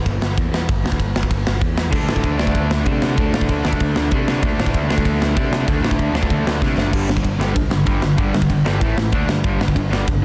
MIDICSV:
0, 0, Header, 1, 4, 480
1, 0, Start_track
1, 0, Tempo, 312826
1, 1048, Time_signature, 4, 2, 24, 8
1, 15726, End_track
2, 0, Start_track
2, 0, Title_t, "Distorted electric guitar"
2, 0, Program_c, 0, 30
2, 2924, Note_on_c, 0, 50, 90
2, 2960, Note_on_c, 0, 57, 87
2, 2976, Note_on_c, 0, 62, 88
2, 3637, Note_off_c, 0, 62, 0
2, 3643, Note_on_c, 0, 62, 94
2, 3669, Note_off_c, 0, 57, 0
2, 3675, Note_on_c, 0, 57, 84
2, 3692, Note_off_c, 0, 50, 0
2, 3698, Note_on_c, 0, 50, 69
2, 4355, Note_off_c, 0, 50, 0
2, 4361, Note_on_c, 0, 50, 70
2, 4386, Note_off_c, 0, 57, 0
2, 4392, Note_on_c, 0, 57, 73
2, 4408, Note_off_c, 0, 62, 0
2, 4414, Note_on_c, 0, 62, 77
2, 4841, Note_off_c, 0, 50, 0
2, 4847, Note_on_c, 0, 50, 86
2, 4872, Note_off_c, 0, 57, 0
2, 4878, Note_on_c, 0, 57, 83
2, 4893, Note_off_c, 0, 62, 0
2, 4899, Note_on_c, 0, 62, 94
2, 5572, Note_off_c, 0, 62, 0
2, 5578, Note_on_c, 0, 62, 89
2, 5599, Note_off_c, 0, 57, 0
2, 5605, Note_on_c, 0, 57, 78
2, 5629, Note_off_c, 0, 50, 0
2, 5635, Note_on_c, 0, 50, 73
2, 6299, Note_off_c, 0, 50, 0
2, 6305, Note_on_c, 0, 50, 76
2, 6322, Note_off_c, 0, 57, 0
2, 6328, Note_on_c, 0, 57, 79
2, 6351, Note_off_c, 0, 62, 0
2, 6357, Note_on_c, 0, 62, 83
2, 6776, Note_off_c, 0, 50, 0
2, 6782, Note_on_c, 0, 50, 96
2, 6806, Note_off_c, 0, 57, 0
2, 6812, Note_on_c, 0, 57, 97
2, 6824, Note_off_c, 0, 62, 0
2, 6830, Note_on_c, 0, 62, 97
2, 7487, Note_off_c, 0, 62, 0
2, 7493, Note_on_c, 0, 62, 92
2, 7527, Note_off_c, 0, 57, 0
2, 7533, Note_on_c, 0, 57, 82
2, 7548, Note_off_c, 0, 50, 0
2, 7554, Note_on_c, 0, 50, 71
2, 8185, Note_off_c, 0, 50, 0
2, 8204, Note_on_c, 0, 50, 75
2, 8210, Note_off_c, 0, 57, 0
2, 8229, Note_on_c, 0, 57, 81
2, 8242, Note_off_c, 0, 62, 0
2, 8249, Note_on_c, 0, 62, 77
2, 8676, Note_off_c, 0, 50, 0
2, 8695, Note_on_c, 0, 50, 82
2, 8699, Note_off_c, 0, 57, 0
2, 8716, Note_on_c, 0, 57, 85
2, 8740, Note_off_c, 0, 62, 0
2, 8747, Note_on_c, 0, 62, 91
2, 9396, Note_off_c, 0, 62, 0
2, 9413, Note_off_c, 0, 50, 0
2, 9414, Note_on_c, 0, 62, 93
2, 9418, Note_off_c, 0, 57, 0
2, 9436, Note_on_c, 0, 57, 84
2, 9465, Note_on_c, 0, 50, 70
2, 10129, Note_off_c, 0, 50, 0
2, 10133, Note_off_c, 0, 62, 0
2, 10144, Note_off_c, 0, 57, 0
2, 10148, Note_on_c, 0, 50, 72
2, 10175, Note_on_c, 0, 57, 78
2, 10191, Note_on_c, 0, 62, 78
2, 10620, Note_off_c, 0, 50, 0
2, 10627, Note_on_c, 0, 43, 84
2, 10633, Note_off_c, 0, 57, 0
2, 10636, Note_on_c, 0, 50, 88
2, 10642, Note_off_c, 0, 62, 0
2, 10651, Note_on_c, 0, 55, 90
2, 10854, Note_off_c, 0, 43, 0
2, 10855, Note_off_c, 0, 50, 0
2, 10872, Note_off_c, 0, 55, 0
2, 10872, Note_on_c, 0, 43, 73
2, 10873, Note_on_c, 0, 50, 81
2, 11078, Note_off_c, 0, 50, 0
2, 11081, Note_off_c, 0, 43, 0
2, 11097, Note_on_c, 0, 50, 88
2, 11099, Note_on_c, 0, 43, 80
2, 11325, Note_off_c, 0, 50, 0
2, 11327, Note_off_c, 0, 43, 0
2, 11342, Note_on_c, 0, 43, 100
2, 11355, Note_on_c, 0, 50, 106
2, 11356, Note_on_c, 0, 55, 112
2, 11562, Note_off_c, 0, 50, 0
2, 11563, Note_off_c, 0, 43, 0
2, 11581, Note_on_c, 0, 43, 66
2, 11581, Note_on_c, 0, 50, 76
2, 11585, Note_off_c, 0, 55, 0
2, 11801, Note_off_c, 0, 43, 0
2, 11808, Note_off_c, 0, 50, 0
2, 11819, Note_on_c, 0, 43, 83
2, 11825, Note_on_c, 0, 50, 84
2, 12031, Note_off_c, 0, 43, 0
2, 12037, Note_off_c, 0, 50, 0
2, 12050, Note_on_c, 0, 43, 85
2, 12055, Note_on_c, 0, 50, 91
2, 12069, Note_on_c, 0, 55, 96
2, 12288, Note_off_c, 0, 43, 0
2, 12295, Note_off_c, 0, 50, 0
2, 12302, Note_off_c, 0, 55, 0
2, 12306, Note_on_c, 0, 43, 76
2, 12317, Note_on_c, 0, 50, 82
2, 12513, Note_off_c, 0, 43, 0
2, 12528, Note_off_c, 0, 50, 0
2, 12532, Note_on_c, 0, 43, 82
2, 12546, Note_on_c, 0, 50, 91
2, 12554, Note_on_c, 0, 55, 96
2, 12774, Note_off_c, 0, 43, 0
2, 12775, Note_off_c, 0, 50, 0
2, 12785, Note_off_c, 0, 55, 0
2, 12791, Note_on_c, 0, 43, 81
2, 12793, Note_on_c, 0, 50, 85
2, 13014, Note_off_c, 0, 43, 0
2, 13015, Note_off_c, 0, 50, 0
2, 13041, Note_on_c, 0, 43, 76
2, 13043, Note_on_c, 0, 50, 84
2, 13247, Note_off_c, 0, 43, 0
2, 13260, Note_off_c, 0, 50, 0
2, 13266, Note_on_c, 0, 43, 87
2, 13279, Note_on_c, 0, 50, 94
2, 13295, Note_on_c, 0, 55, 109
2, 13502, Note_off_c, 0, 43, 0
2, 13504, Note_off_c, 0, 50, 0
2, 13510, Note_on_c, 0, 45, 93
2, 13517, Note_off_c, 0, 55, 0
2, 13525, Note_on_c, 0, 52, 92
2, 13530, Note_on_c, 0, 57, 93
2, 13741, Note_off_c, 0, 45, 0
2, 13743, Note_off_c, 0, 52, 0
2, 13754, Note_off_c, 0, 57, 0
2, 13759, Note_on_c, 0, 45, 79
2, 13762, Note_on_c, 0, 52, 87
2, 13979, Note_off_c, 0, 45, 0
2, 13981, Note_off_c, 0, 52, 0
2, 14001, Note_on_c, 0, 50, 81
2, 14007, Note_on_c, 0, 57, 91
2, 14020, Note_on_c, 0, 62, 95
2, 14211, Note_off_c, 0, 50, 0
2, 14220, Note_off_c, 0, 57, 0
2, 14229, Note_on_c, 0, 50, 73
2, 14238, Note_on_c, 0, 57, 79
2, 14240, Note_off_c, 0, 62, 0
2, 14455, Note_off_c, 0, 50, 0
2, 14460, Note_off_c, 0, 57, 0
2, 14486, Note_on_c, 0, 43, 77
2, 14495, Note_on_c, 0, 50, 91
2, 14501, Note_on_c, 0, 55, 91
2, 14714, Note_off_c, 0, 43, 0
2, 14718, Note_off_c, 0, 50, 0
2, 14721, Note_off_c, 0, 55, 0
2, 14734, Note_on_c, 0, 43, 81
2, 14741, Note_on_c, 0, 50, 84
2, 14948, Note_off_c, 0, 43, 0
2, 14952, Note_off_c, 0, 50, 0
2, 14966, Note_on_c, 0, 43, 84
2, 14973, Note_on_c, 0, 50, 95
2, 15176, Note_off_c, 0, 43, 0
2, 15182, Note_off_c, 0, 50, 0
2, 15195, Note_on_c, 0, 43, 102
2, 15200, Note_on_c, 0, 50, 105
2, 15209, Note_on_c, 0, 55, 102
2, 15428, Note_off_c, 0, 50, 0
2, 15429, Note_off_c, 0, 43, 0
2, 15436, Note_off_c, 0, 55, 0
2, 15445, Note_on_c, 0, 43, 72
2, 15446, Note_on_c, 0, 50, 85
2, 15665, Note_off_c, 0, 43, 0
2, 15665, Note_off_c, 0, 50, 0
2, 15726, End_track
3, 0, Start_track
3, 0, Title_t, "Picked electric bass"
3, 0, Program_c, 1, 34
3, 90, Note_on_c, 1, 31, 92
3, 304, Note_off_c, 1, 31, 0
3, 325, Note_on_c, 1, 31, 93
3, 541, Note_off_c, 1, 31, 0
3, 576, Note_on_c, 1, 40, 88
3, 782, Note_off_c, 1, 40, 0
3, 791, Note_on_c, 1, 40, 81
3, 1013, Note_off_c, 1, 40, 0
3, 1056, Note_on_c, 1, 31, 87
3, 1267, Note_off_c, 1, 31, 0
3, 1285, Note_on_c, 1, 38, 88
3, 1500, Note_off_c, 1, 38, 0
3, 1523, Note_on_c, 1, 31, 87
3, 1739, Note_off_c, 1, 31, 0
3, 1767, Note_on_c, 1, 31, 90
3, 1980, Note_off_c, 1, 31, 0
3, 2011, Note_on_c, 1, 31, 97
3, 2223, Note_off_c, 1, 31, 0
3, 2255, Note_on_c, 1, 31, 84
3, 2465, Note_off_c, 1, 31, 0
3, 2474, Note_on_c, 1, 40, 88
3, 2693, Note_off_c, 1, 40, 0
3, 2719, Note_on_c, 1, 40, 81
3, 2935, Note_off_c, 1, 40, 0
3, 2950, Note_on_c, 1, 38, 96
3, 3170, Note_off_c, 1, 38, 0
3, 3205, Note_on_c, 1, 45, 90
3, 3418, Note_off_c, 1, 45, 0
3, 3438, Note_on_c, 1, 38, 84
3, 3654, Note_off_c, 1, 38, 0
3, 3690, Note_on_c, 1, 38, 88
3, 3901, Note_off_c, 1, 38, 0
3, 3916, Note_on_c, 1, 38, 90
3, 4133, Note_off_c, 1, 38, 0
3, 4145, Note_on_c, 1, 38, 88
3, 4367, Note_off_c, 1, 38, 0
3, 4389, Note_on_c, 1, 48, 91
3, 4609, Note_off_c, 1, 48, 0
3, 4649, Note_on_c, 1, 48, 86
3, 4860, Note_off_c, 1, 48, 0
3, 4874, Note_on_c, 1, 38, 88
3, 5091, Note_off_c, 1, 38, 0
3, 5104, Note_on_c, 1, 45, 94
3, 5325, Note_off_c, 1, 45, 0
3, 5361, Note_on_c, 1, 38, 90
3, 5574, Note_off_c, 1, 38, 0
3, 5603, Note_on_c, 1, 38, 95
3, 5815, Note_off_c, 1, 38, 0
3, 5840, Note_on_c, 1, 38, 96
3, 6054, Note_off_c, 1, 38, 0
3, 6087, Note_on_c, 1, 38, 87
3, 6298, Note_off_c, 1, 38, 0
3, 6312, Note_on_c, 1, 48, 89
3, 6529, Note_off_c, 1, 48, 0
3, 6576, Note_on_c, 1, 48, 87
3, 6783, Note_off_c, 1, 48, 0
3, 6789, Note_on_c, 1, 38, 96
3, 7008, Note_off_c, 1, 38, 0
3, 7050, Note_on_c, 1, 45, 98
3, 7259, Note_off_c, 1, 45, 0
3, 7274, Note_on_c, 1, 38, 89
3, 7490, Note_off_c, 1, 38, 0
3, 7529, Note_on_c, 1, 38, 94
3, 7739, Note_off_c, 1, 38, 0
3, 7751, Note_on_c, 1, 38, 98
3, 7969, Note_off_c, 1, 38, 0
3, 7982, Note_on_c, 1, 38, 88
3, 8204, Note_off_c, 1, 38, 0
3, 8228, Note_on_c, 1, 48, 92
3, 8437, Note_off_c, 1, 48, 0
3, 8446, Note_on_c, 1, 48, 89
3, 8675, Note_off_c, 1, 48, 0
3, 8716, Note_on_c, 1, 38, 90
3, 8902, Note_off_c, 1, 38, 0
3, 8911, Note_on_c, 1, 45, 98
3, 9147, Note_off_c, 1, 45, 0
3, 9183, Note_on_c, 1, 38, 85
3, 9377, Note_off_c, 1, 38, 0
3, 9386, Note_on_c, 1, 38, 92
3, 9624, Note_off_c, 1, 38, 0
3, 9665, Note_on_c, 1, 38, 93
3, 9886, Note_off_c, 1, 38, 0
3, 9899, Note_on_c, 1, 38, 81
3, 10122, Note_off_c, 1, 38, 0
3, 10151, Note_on_c, 1, 48, 87
3, 10358, Note_off_c, 1, 48, 0
3, 10367, Note_on_c, 1, 30, 86
3, 10631, Note_off_c, 1, 30, 0
3, 10631, Note_on_c, 1, 31, 90
3, 10837, Note_off_c, 1, 31, 0
3, 10849, Note_on_c, 1, 31, 90
3, 11065, Note_off_c, 1, 31, 0
3, 11110, Note_on_c, 1, 31, 83
3, 11317, Note_off_c, 1, 31, 0
3, 11328, Note_on_c, 1, 31, 90
3, 11545, Note_off_c, 1, 31, 0
3, 11599, Note_on_c, 1, 36, 96
3, 11794, Note_off_c, 1, 36, 0
3, 11804, Note_on_c, 1, 31, 88
3, 12022, Note_off_c, 1, 31, 0
3, 12072, Note_on_c, 1, 31, 96
3, 12279, Note_off_c, 1, 31, 0
3, 12313, Note_on_c, 1, 31, 86
3, 12520, Note_off_c, 1, 31, 0
3, 12552, Note_on_c, 1, 31, 91
3, 12760, Note_off_c, 1, 31, 0
3, 12785, Note_on_c, 1, 31, 93
3, 12996, Note_off_c, 1, 31, 0
3, 13033, Note_on_c, 1, 31, 93
3, 13241, Note_off_c, 1, 31, 0
3, 13266, Note_on_c, 1, 31, 89
3, 13476, Note_off_c, 1, 31, 0
3, 13517, Note_on_c, 1, 33, 90
3, 13723, Note_off_c, 1, 33, 0
3, 13746, Note_on_c, 1, 33, 87
3, 13957, Note_off_c, 1, 33, 0
3, 13996, Note_on_c, 1, 38, 95
3, 14203, Note_off_c, 1, 38, 0
3, 14235, Note_on_c, 1, 43, 87
3, 14443, Note_off_c, 1, 43, 0
3, 14487, Note_on_c, 1, 31, 98
3, 14690, Note_off_c, 1, 31, 0
3, 14710, Note_on_c, 1, 31, 94
3, 14920, Note_off_c, 1, 31, 0
3, 14971, Note_on_c, 1, 31, 88
3, 15173, Note_off_c, 1, 31, 0
3, 15186, Note_on_c, 1, 31, 92
3, 15399, Note_off_c, 1, 31, 0
3, 15453, Note_on_c, 1, 36, 96
3, 15655, Note_off_c, 1, 36, 0
3, 15726, End_track
4, 0, Start_track
4, 0, Title_t, "Drums"
4, 92, Note_on_c, 9, 51, 76
4, 93, Note_on_c, 9, 36, 99
4, 246, Note_off_c, 9, 36, 0
4, 246, Note_off_c, 9, 51, 0
4, 339, Note_on_c, 9, 38, 112
4, 493, Note_off_c, 9, 38, 0
4, 577, Note_on_c, 9, 36, 116
4, 578, Note_on_c, 9, 51, 69
4, 730, Note_off_c, 9, 36, 0
4, 731, Note_off_c, 9, 51, 0
4, 830, Note_on_c, 9, 38, 105
4, 983, Note_off_c, 9, 38, 0
4, 1055, Note_on_c, 9, 51, 80
4, 1057, Note_on_c, 9, 36, 120
4, 1208, Note_off_c, 9, 51, 0
4, 1210, Note_off_c, 9, 36, 0
4, 1315, Note_on_c, 9, 38, 114
4, 1411, Note_on_c, 9, 36, 97
4, 1468, Note_off_c, 9, 38, 0
4, 1528, Note_on_c, 9, 51, 72
4, 1529, Note_off_c, 9, 36, 0
4, 1529, Note_on_c, 9, 36, 88
4, 1682, Note_off_c, 9, 36, 0
4, 1682, Note_off_c, 9, 51, 0
4, 1778, Note_on_c, 9, 38, 107
4, 1887, Note_on_c, 9, 36, 90
4, 1932, Note_off_c, 9, 38, 0
4, 2002, Note_on_c, 9, 51, 77
4, 2006, Note_off_c, 9, 36, 0
4, 2006, Note_on_c, 9, 36, 100
4, 2156, Note_off_c, 9, 51, 0
4, 2160, Note_off_c, 9, 36, 0
4, 2252, Note_on_c, 9, 38, 113
4, 2406, Note_off_c, 9, 38, 0
4, 2474, Note_on_c, 9, 51, 73
4, 2478, Note_on_c, 9, 36, 105
4, 2628, Note_off_c, 9, 51, 0
4, 2632, Note_off_c, 9, 36, 0
4, 2724, Note_on_c, 9, 38, 108
4, 2878, Note_off_c, 9, 38, 0
4, 2952, Note_on_c, 9, 49, 102
4, 2956, Note_on_c, 9, 36, 114
4, 3105, Note_off_c, 9, 49, 0
4, 3109, Note_off_c, 9, 36, 0
4, 3201, Note_on_c, 9, 38, 119
4, 3315, Note_on_c, 9, 36, 93
4, 3355, Note_off_c, 9, 38, 0
4, 3431, Note_on_c, 9, 51, 63
4, 3433, Note_off_c, 9, 36, 0
4, 3433, Note_on_c, 9, 36, 97
4, 3585, Note_off_c, 9, 51, 0
4, 3587, Note_off_c, 9, 36, 0
4, 3674, Note_on_c, 9, 38, 107
4, 3791, Note_on_c, 9, 36, 95
4, 3828, Note_off_c, 9, 38, 0
4, 3911, Note_off_c, 9, 36, 0
4, 3911, Note_on_c, 9, 36, 100
4, 3911, Note_on_c, 9, 51, 71
4, 4064, Note_off_c, 9, 51, 0
4, 4065, Note_off_c, 9, 36, 0
4, 4158, Note_on_c, 9, 38, 116
4, 4311, Note_off_c, 9, 38, 0
4, 4382, Note_on_c, 9, 51, 71
4, 4394, Note_on_c, 9, 36, 105
4, 4535, Note_off_c, 9, 51, 0
4, 4548, Note_off_c, 9, 36, 0
4, 4634, Note_on_c, 9, 38, 114
4, 4788, Note_off_c, 9, 38, 0
4, 4870, Note_on_c, 9, 51, 78
4, 4878, Note_on_c, 9, 36, 116
4, 5023, Note_off_c, 9, 51, 0
4, 5031, Note_off_c, 9, 36, 0
4, 5125, Note_on_c, 9, 38, 113
4, 5238, Note_on_c, 9, 36, 100
4, 5278, Note_off_c, 9, 38, 0
4, 5349, Note_on_c, 9, 51, 71
4, 5357, Note_off_c, 9, 36, 0
4, 5357, Note_on_c, 9, 36, 97
4, 5502, Note_off_c, 9, 51, 0
4, 5511, Note_off_c, 9, 36, 0
4, 5597, Note_on_c, 9, 38, 111
4, 5718, Note_on_c, 9, 36, 93
4, 5750, Note_off_c, 9, 38, 0
4, 5832, Note_on_c, 9, 51, 81
4, 5839, Note_off_c, 9, 36, 0
4, 5839, Note_on_c, 9, 36, 107
4, 5985, Note_off_c, 9, 51, 0
4, 5993, Note_off_c, 9, 36, 0
4, 6075, Note_on_c, 9, 38, 112
4, 6229, Note_off_c, 9, 38, 0
4, 6309, Note_on_c, 9, 51, 70
4, 6319, Note_on_c, 9, 36, 114
4, 6463, Note_off_c, 9, 51, 0
4, 6473, Note_off_c, 9, 36, 0
4, 6568, Note_on_c, 9, 38, 113
4, 6721, Note_off_c, 9, 38, 0
4, 6790, Note_on_c, 9, 51, 82
4, 6796, Note_on_c, 9, 36, 124
4, 6944, Note_off_c, 9, 51, 0
4, 6950, Note_off_c, 9, 36, 0
4, 7052, Note_on_c, 9, 38, 105
4, 7157, Note_on_c, 9, 36, 96
4, 7205, Note_off_c, 9, 38, 0
4, 7278, Note_on_c, 9, 51, 70
4, 7279, Note_off_c, 9, 36, 0
4, 7279, Note_on_c, 9, 36, 100
4, 7432, Note_off_c, 9, 36, 0
4, 7432, Note_off_c, 9, 51, 0
4, 7526, Note_on_c, 9, 38, 109
4, 7637, Note_on_c, 9, 36, 91
4, 7679, Note_off_c, 9, 38, 0
4, 7753, Note_off_c, 9, 36, 0
4, 7753, Note_on_c, 9, 36, 102
4, 7755, Note_on_c, 9, 51, 72
4, 7907, Note_off_c, 9, 36, 0
4, 7909, Note_off_c, 9, 51, 0
4, 8009, Note_on_c, 9, 38, 117
4, 8163, Note_off_c, 9, 38, 0
4, 8236, Note_on_c, 9, 36, 115
4, 8237, Note_on_c, 9, 51, 69
4, 8390, Note_off_c, 9, 36, 0
4, 8390, Note_off_c, 9, 51, 0
4, 8482, Note_on_c, 9, 38, 120
4, 8635, Note_off_c, 9, 38, 0
4, 8714, Note_on_c, 9, 36, 117
4, 8715, Note_on_c, 9, 51, 83
4, 8868, Note_off_c, 9, 36, 0
4, 8868, Note_off_c, 9, 51, 0
4, 8968, Note_on_c, 9, 38, 111
4, 9071, Note_on_c, 9, 36, 91
4, 9122, Note_off_c, 9, 38, 0
4, 9193, Note_off_c, 9, 36, 0
4, 9193, Note_on_c, 9, 36, 91
4, 9193, Note_on_c, 9, 51, 73
4, 9346, Note_off_c, 9, 36, 0
4, 9346, Note_off_c, 9, 51, 0
4, 9437, Note_on_c, 9, 38, 98
4, 9553, Note_on_c, 9, 36, 92
4, 9591, Note_off_c, 9, 38, 0
4, 9670, Note_on_c, 9, 51, 78
4, 9672, Note_off_c, 9, 36, 0
4, 9672, Note_on_c, 9, 36, 103
4, 9823, Note_off_c, 9, 51, 0
4, 9825, Note_off_c, 9, 36, 0
4, 9931, Note_on_c, 9, 38, 106
4, 10085, Note_off_c, 9, 38, 0
4, 10156, Note_on_c, 9, 36, 105
4, 10172, Note_on_c, 9, 38, 63
4, 10309, Note_off_c, 9, 36, 0
4, 10325, Note_off_c, 9, 38, 0
4, 10408, Note_on_c, 9, 38, 90
4, 10561, Note_off_c, 9, 38, 0
4, 10638, Note_on_c, 9, 36, 121
4, 10639, Note_on_c, 9, 49, 120
4, 10792, Note_off_c, 9, 36, 0
4, 10793, Note_off_c, 9, 49, 0
4, 10885, Note_on_c, 9, 38, 116
4, 10997, Note_on_c, 9, 36, 99
4, 11039, Note_off_c, 9, 38, 0
4, 11117, Note_off_c, 9, 36, 0
4, 11117, Note_on_c, 9, 36, 87
4, 11119, Note_on_c, 9, 51, 66
4, 11271, Note_off_c, 9, 36, 0
4, 11272, Note_off_c, 9, 51, 0
4, 11372, Note_on_c, 9, 38, 108
4, 11525, Note_off_c, 9, 38, 0
4, 11598, Note_on_c, 9, 36, 117
4, 11599, Note_on_c, 9, 51, 75
4, 11752, Note_off_c, 9, 36, 0
4, 11752, Note_off_c, 9, 51, 0
4, 11835, Note_on_c, 9, 38, 116
4, 11988, Note_off_c, 9, 38, 0
4, 12063, Note_on_c, 9, 51, 73
4, 12073, Note_on_c, 9, 36, 106
4, 12217, Note_off_c, 9, 51, 0
4, 12226, Note_off_c, 9, 36, 0
4, 12310, Note_on_c, 9, 38, 117
4, 12464, Note_off_c, 9, 38, 0
4, 12550, Note_on_c, 9, 51, 76
4, 12556, Note_on_c, 9, 36, 112
4, 12703, Note_off_c, 9, 51, 0
4, 12710, Note_off_c, 9, 36, 0
4, 12804, Note_on_c, 9, 38, 115
4, 12917, Note_on_c, 9, 36, 97
4, 12957, Note_off_c, 9, 38, 0
4, 13039, Note_off_c, 9, 36, 0
4, 13039, Note_on_c, 9, 36, 97
4, 13040, Note_on_c, 9, 51, 74
4, 13192, Note_off_c, 9, 36, 0
4, 13193, Note_off_c, 9, 51, 0
4, 13290, Note_on_c, 9, 38, 106
4, 13443, Note_off_c, 9, 38, 0
4, 13523, Note_on_c, 9, 36, 117
4, 13530, Note_on_c, 9, 51, 83
4, 13676, Note_off_c, 9, 36, 0
4, 13683, Note_off_c, 9, 51, 0
4, 13774, Note_on_c, 9, 38, 108
4, 13928, Note_off_c, 9, 38, 0
4, 13996, Note_on_c, 9, 51, 78
4, 14004, Note_on_c, 9, 36, 113
4, 14149, Note_off_c, 9, 51, 0
4, 14157, Note_off_c, 9, 36, 0
4, 14252, Note_on_c, 9, 38, 106
4, 14406, Note_off_c, 9, 38, 0
4, 14483, Note_on_c, 9, 51, 84
4, 14489, Note_on_c, 9, 36, 121
4, 14637, Note_off_c, 9, 51, 0
4, 14642, Note_off_c, 9, 36, 0
4, 14747, Note_on_c, 9, 38, 110
4, 14855, Note_on_c, 9, 36, 94
4, 14900, Note_off_c, 9, 38, 0
4, 14976, Note_off_c, 9, 36, 0
4, 14976, Note_on_c, 9, 36, 94
4, 14983, Note_on_c, 9, 51, 72
4, 15129, Note_off_c, 9, 36, 0
4, 15137, Note_off_c, 9, 51, 0
4, 15238, Note_on_c, 9, 38, 115
4, 15392, Note_off_c, 9, 38, 0
4, 15463, Note_on_c, 9, 36, 116
4, 15473, Note_on_c, 9, 51, 78
4, 15617, Note_off_c, 9, 36, 0
4, 15627, Note_off_c, 9, 51, 0
4, 15726, End_track
0, 0, End_of_file